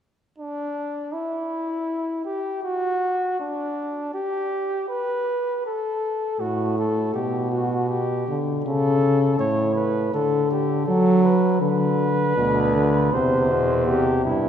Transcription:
0.38 flugelhorn D4
1.13 flugelhorn E4
2.25 flugelhorn G4
2.63 flugelhorn F#4
3.40 flugelhorn D4
4.14 flugelhorn G4
4.89 flugelhorn B4
5.67 flugelhorn A4
6.40 euphonium A2, flugelhorn F#4
6.79 flugelhorn A4
7.14 euphonium B2, flugelhorn G4
7.52 flugelhorn F#4
7.90 flugelhorn G4
8.28 euphonium D3
8.64 euphonium C#3, flugelhorn A4
9.39 euphonium A2, flugelhorn C#5
9.75 flugelhorn B4
10.14 euphonium D3, flugelhorn A4
10.51 flugelhorn G4
10.86 euphonium F#3, flugelhorn A4
11.24 flugelhorn B4
11.61 euphonium D3, flugelhorn B4
12.37 bass trombone D2, euphonium B2
12.75 euphonium D3
13.13 bass trombone E2, euphonium C3, flugelhorn C5
13.51 euphonium B2
13.86 euphonium C3, flugelhorn G4
14.25 bass trombone G2, flugelhorn E4

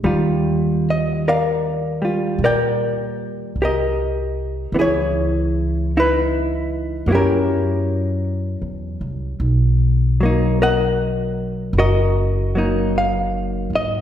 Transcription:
0.04 upright bass D#2, hollow-body jazz guitar D#3 G3 F4
0.90 hollow-body jazz guitar D#5
1.28 hollow-body jazz guitar A#4 D5 F5
2.02 hollow-body jazz guitar G3 F4
2.38 upright bass A#2
2.44 hollow-body jazz guitar A#4 D5 G5
3.56 upright bass C2
3.62 hollow-body jazz guitar G4 A#4 D#5
4.72 upright bass C#2, hollow-body jazz guitar E3 B3
4.79 hollow-body jazz guitar E4 G#4 C#5
5.97 hollow-body jazz guitar D#4 E4 B4
7.06 upright bass F#2, hollow-body jazz guitar F#3 A#3
7.11 hollow-body jazz guitar C#4 E4 G4
7.15 hollow-body jazz guitar A#4
8.62 upright bass E2
9.01 upright bass C2
9.40 upright bass B1
10.21 hollow-body jazz guitar F#3 A#3
10.25 hollow-body jazz guitar D#4
10.62 hollow-body jazz guitar A#4 D#5 F#5
11.73 upright bass F#1
11.78 hollow-body jazz guitar F#4 A#4 D#5
12.55 hollow-body jazz guitar F#3 A#3 D#4
12.98 hollow-body jazz guitar F5
13.70 upright bass G#2
13.75 hollow-body jazz guitar D#5

